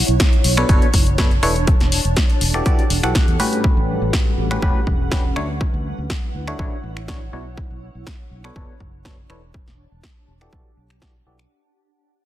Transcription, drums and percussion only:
0.08 closed hi-hat soft
0.20 kick loud
0.20 snare loud
0.20 closed hi-hat medium
0.33 closed hi-hat soft
0.44 open hi-hat loud
0.57 finger snap medium
0.69 kick loud
0.69 closed hi-hat medium
0.82 closed hi-hat soft
0.94 kick medium
0.94 open hi-hat loud
1.07 closed hi-hat soft
1.18 kick loud
1.18 snare loud
1.18 closed hi-hat medium
1.31 closed hi-hat soft
1.43 finger snap medium
1.43 open hi-hat loud
1.56 closed hi-hat soft
1.67 kick loud
1.67 closed hi-hat medium
1.80 snare soft
1.80 closed hi-hat soft
1.92 open hi-hat loud
2.05 closed hi-hat soft
2.17 kick loud
2.17 snare loud
2.17 closed hi-hat medium
2.30 closed hi-hat soft
2.41 open hi-hat loud
2.54 finger snap medium
2.66 kick loud
2.66 closed hi-hat medium
2.79 closed hi-hat soft
2.90 open hi-hat loud
3.03 finger snap medium
3.03 closed hi-hat soft
3.15 kick loud
3.15 snare loud
3.15 closed hi-hat medium
3.28 closed hi-hat soft
3.40 open hi-hat loud
3.53 closed hi-hat soft
3.64 kick loud
4.13 kick loud
4.13 snare loud
4.51 finger snap medium
4.62 kick loud
4.87 kick medium
5.12 kick loud
5.12 snare loud
5.36 finger snap medium
5.61 kick loud
6.10 kick loud
6.10 snare loud
6.48 finger snap medium
6.59 kick loud
6.97 finger snap medium
7.08 kick loud
7.08 snare loud
7.57 kick loud
8.07 kick loud
8.07 snare loud
8.44 finger snap medium
8.56 kick loud
8.80 kick medium
9.05 kick loud
9.05 snare loud
9.30 finger snap medium
9.54 kick loud
9.68 snare soft
10.03 kick loud
10.03 snare loud
10.41 finger snap medium
10.53 kick loud
10.90 finger snap medium
11.02 kick loud
11.02 snare loud
11.39 finger snap medium

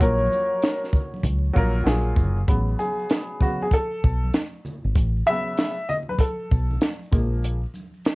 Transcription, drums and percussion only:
0.01 kick loud
0.01 closed hi-hat medium
0.01 maracas medium
0.21 high conga medium
0.21 maracas soft
0.32 high conga soft
0.32 shaker medium
0.32 maracas soft
0.52 maracas soft
0.62 snare loud
0.62 closed hi-hat medium
0.62 maracas medium
0.84 snare soft
0.84 maracas soft
0.93 kick medium
0.93 low conga medium
0.93 shaker soft
0.93 maracas soft
1.14 high conga medium
1.14 maracas soft
1.24 kick medium
1.24 closed hi-hat medium
1.24 high conga soft
1.24 maracas medium
1.44 maracas soft
1.55 kick medium
1.55 maracas soft
1.55 shaker soft
1.75 high conga medium
1.75 maracas soft
1.86 snare loud
1.86 closed hi-hat medium
1.86 maracas medium
2.07 maracas soft
2.16 kick medium
2.16 low conga medium
2.16 maracas medium
2.16 shaker medium
2.37 maracas soft
2.48 kick loud
2.48 closed hi-hat medium
2.48 maracas medium
2.68 maracas soft
2.79 high conga soft
2.79 maracas soft
2.79 shaker medium
2.99 maracas soft
3.10 snare loud
3.10 closed hi-hat medium
3.10 maracas medium
3.30 maracas soft
3.41 kick medium
3.41 low conga medium
3.41 maracas soft
3.41 shaker medium
3.62 high conga medium
3.62 maracas soft
3.71 kick medium
3.71 closed hi-hat medium
3.71 maracas medium
3.91 maracas soft
4.03 kick medium
4.03 maracas soft
4.03 shaker soft
4.24 high conga medium
4.24 maracas soft
4.34 snare loud
4.34 closed hi-hat medium
4.34 maracas medium
4.55 maracas soft
4.65 low conga medium
4.65 maracas soft
4.65 shaker medium
4.86 maracas soft
4.96 kick loud
4.96 closed hi-hat medium
4.96 maracas medium
5.17 maracas soft
5.27 high conga medium
5.27 shaker medium
5.27 maracas medium
5.47 maracas soft
5.57 snare loud
5.57 closed hi-hat medium
5.57 maracas medium
5.78 maracas soft
5.89 low conga medium
5.89 maracas medium
5.89 shaker medium
6.09 high conga medium
6.09 maracas soft
6.19 kick medium
6.19 closed hi-hat medium
6.19 maracas medium
6.39 maracas soft
6.51 kick medium
6.51 maracas soft
6.51 shaker soft
6.71 high conga medium
6.71 maracas soft
6.81 snare loud
6.81 closed hi-hat medium
6.81 maracas medium
7.02 maracas soft
7.12 kick loud
7.12 closed hi-hat medium
7.12 low conga medium
7.12 maracas soft
7.12 shaker medium
7.33 maracas soft
7.42 closed hi-hat medium
7.42 maracas medium
7.63 maracas soft
7.74 high conga medium
7.74 maracas soft
7.74 shaker medium
7.93 maracas medium
8.04 snare loud
8.04 closed hi-hat medium
8.04 maracas medium

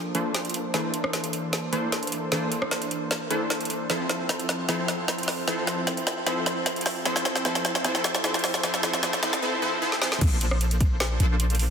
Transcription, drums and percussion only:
0.15 closed hi-hat medium
0.34 snare medium
0.34 closed hi-hat medium
0.45 closed hi-hat soft
0.50 closed hi-hat medium
0.54 closed hi-hat medium
0.74 snare medium
0.74 closed hi-hat medium
0.94 closed hi-hat medium
1.04 cross-stick medium
1.13 snare medium
1.13 closed hi-hat medium
1.24 closed hi-hat medium
1.33 closed hi-hat medium
1.53 snare medium
1.53 closed hi-hat medium
1.73 closed hi-hat medium
1.92 snare medium
1.92 closed hi-hat medium
2.03 closed hi-hat soft
2.07 closed hi-hat medium
2.12 closed hi-hat medium
2.32 snare medium
2.32 closed hi-hat medium
2.52 closed hi-hat medium
2.62 cross-stick medium
2.71 snare medium
2.71 closed hi-hat medium
2.82 closed hi-hat medium
2.91 closed hi-hat medium
3.11 snare medium
3.11 closed hi-hat medium
3.31 closed hi-hat medium
3.50 snare medium
3.50 closed hi-hat medium
3.61 closed hi-hat soft
3.65 closed hi-hat medium
3.70 closed hi-hat medium
3.90 snare medium
3.90 closed hi-hat medium
4.09 snare medium
4.09 closed hi-hat medium
4.29 snare medium
4.29 closed hi-hat medium
4.39 closed hi-hat medium
4.49 snare medium
4.49 closed hi-hat medium
4.69 snare medium
4.69 closed hi-hat medium
4.88 snare medium
4.88 closed hi-hat medium
5.08 snare medium
5.08 closed hi-hat medium
5.18 closed hi-hat soft
5.23 closed hi-hat medium
5.28 snare medium
5.28 open hi-hat medium
5.48 snare medium
5.48 closed hi-hat medium
5.67 snare medium
5.67 closed hi-hat medium
5.87 snare medium
5.87 closed hi-hat medium
5.97 closed hi-hat medium
6.07 snare medium
6.07 closed hi-hat medium
6.27 snare medium
6.27 closed hi-hat medium
6.46 snare medium
6.46 closed hi-hat medium
6.66 snare medium
6.66 closed hi-hat medium
6.76 closed hi-hat soft
6.81 closed hi-hat medium
6.86 snare medium
6.86 open hi-hat medium
7.05 snare medium
7.05 closed hi-hat medium
7.16 snare medium
7.25 snare medium
7.25 closed hi-hat medium
7.36 snare medium
7.45 snare loud
7.45 closed hi-hat medium
7.55 snare medium
7.55 closed hi-hat medium
7.65 snare medium
7.65 closed hi-hat medium
7.75 snare medium
7.85 snare loud
7.85 closed hi-hat medium
7.95 snare medium
8.04 snare loud
8.04 closed hi-hat medium
8.15 snare medium
8.24 snare loud
8.24 closed hi-hat medium
8.34 snare medium
8.34 closed hi-hat soft
8.39 closed hi-hat medium
8.44 snare loud
8.44 open hi-hat loud
8.54 snare medium
8.63 snare loud
8.63 closed hi-hat medium
8.74 snare medium
8.83 snare loud
8.83 closed hi-hat medium
8.94 snare medium
9.03 snare loud
9.03 closed hi-hat medium
9.13 snare medium
9.13 closed hi-hat medium
9.23 snare loud
9.23 closed hi-hat medium
9.33 snare loud
9.92 snare medium
10.02 snare medium
10.12 snare medium
10.21 kick loud
10.21 closed hi-hat medium
10.21 crash loud
10.41 closed hi-hat medium
10.51 cross-stick medium
10.61 closed hi-hat medium
10.71 closed hi-hat medium
10.81 kick medium
10.81 closed hi-hat medium
11.00 snare loud
11.00 closed hi-hat medium
11.20 closed hi-hat medium
11.40 closed hi-hat medium
11.50 closed hi-hat soft
11.55 closed hi-hat medium
11.59 open hi-hat loud

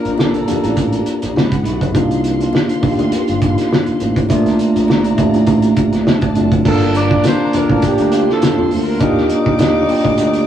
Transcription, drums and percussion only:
0.05 closed hi-hat soft
0.17 snare medium
0.17 high conga medium
0.34 closed hi-hat soft
0.48 closed hi-hat medium
0.48 muted conga soft
0.48 low conga medium
0.64 closed hi-hat soft
0.76 kick medium
0.76 closed hi-hat medium
0.76 muted conga soft
0.92 closed hi-hat soft
1.06 closed hi-hat medium
1.22 closed hi-hat medium
1.36 snare medium
1.36 high conga medium
1.52 kick medium
1.52 closed hi-hat soft
1.64 closed hi-hat medium
1.64 high conga medium
1.81 kick medium
1.81 closed hi-hat soft
1.94 kick medium
1.94 closed hi-hat medium
1.94 muted conga soft
2.11 closed hi-hat soft
2.24 closed hi-hat medium
2.41 closed hi-hat soft
2.53 snare loud
2.53 high conga medium
2.69 closed hi-hat soft
2.83 kick medium
2.83 open hi-hat soft
2.83 muted conga medium
2.83 low conga medium
2.99 closed hi-hat soft
3.12 closed hi-hat medium
3.12 muted conga soft
3.28 closed hi-hat medium
3.42 kick medium
3.42 closed hi-hat medium
3.58 snare soft
3.58 closed hi-hat medium
3.71 snare loud
3.71 high conga medium
3.86 closed hi-hat soft
4.00 closed hi-hat medium
4.00 high conga medium
4.16 kick medium
4.16 closed hi-hat soft
4.29 kick medium
4.29 closed hi-hat medium
4.29 muted conga medium
4.46 snare soft
4.46 closed hi-hat soft
4.59 closed hi-hat medium
4.76 closed hi-hat soft
4.88 snare medium
4.88 high conga medium
5.04 closed hi-hat soft
5.18 kick medium
5.18 closed hi-hat medium
5.18 muted conga soft
5.18 low conga medium
5.34 closed hi-hat soft
5.47 kick medium
5.47 closed hi-hat medium
5.47 muted conga soft
5.62 closed hi-hat medium
5.76 kick medium
5.76 closed hi-hat medium
5.93 snare soft
5.93 closed hi-hat medium
6.07 snare loud
6.07 high conga medium
6.21 kick medium
6.21 closed hi-hat soft
6.35 closed hi-hat medium
6.35 high conga medium
6.52 kick medium
6.52 closed hi-hat soft
6.65 kick loud
6.65 crash medium
6.65 muted conga medium
6.83 snare soft
6.94 closed hi-hat medium
7.11 kick medium
7.24 snare loud
7.24 closed hi-hat medium
7.24 high conga medium
7.53 closed hi-hat medium
7.53 muted conga medium
7.53 low conga medium
7.69 kick medium
7.82 kick medium
7.82 closed hi-hat medium
7.82 muted conga soft
7.98 closed hi-hat medium
8.12 closed hi-hat medium
8.30 snare soft
8.42 snare loud
8.42 closed hi-hat medium
8.42 high conga medium
8.71 open hi-hat soft
8.71 high conga medium
9.00 kick loud
9.00 closed hi-hat medium
9.00 muted conga medium
9.18 snare soft
9.30 closed hi-hat medium
9.30 muted conga soft
9.46 kick medium
9.59 snare loud
9.59 closed hi-hat medium
9.59 high conga medium
9.89 open hi-hat medium
9.89 muted conga medium
10.05 kick medium
10.18 closed hi-hat medium
10.18 muted conga soft
10.33 closed hi-hat medium

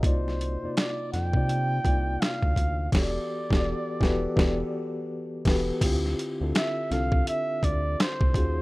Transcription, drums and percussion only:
0.03 kick loud
0.03 closed hi-hat medium
0.28 snare soft
0.41 closed hi-hat medium
0.77 finger snap medium
0.77 snare loud
0.77 closed hi-hat medium
1.14 snare soft
1.14 closed hi-hat medium
1.33 kick medium
1.49 closed hi-hat medium
1.85 kick medium
1.85 closed hi-hat medium
2.22 finger snap medium
2.22 snare loud
2.22 closed hi-hat medium
2.42 kick medium
2.56 kick medium
2.56 closed hi-hat medium
2.92 kick loud
2.92 snare loud
2.92 crash medium
3.51 kick loud
3.51 snare loud
4.01 kick loud
4.01 snare medium
4.37 kick loud
4.37 snare loud
5.45 kick loud
5.45 snare loud
5.45 crash medium
5.81 kick loud
5.81 closed hi-hat medium
5.81 crash loud
6.06 snare soft
6.19 closed hi-hat medium
6.55 finger snap loud
6.55 snare loud
6.55 closed hi-hat medium
6.92 snare soft
6.92 closed hi-hat medium
7.12 kick loud
7.27 closed hi-hat medium
7.63 kick medium
7.63 closed hi-hat medium
8.00 finger snap loud
8.00 snare loud
8.00 closed hi-hat medium
8.21 kick loud
8.34 kick loud
8.34 closed hi-hat medium

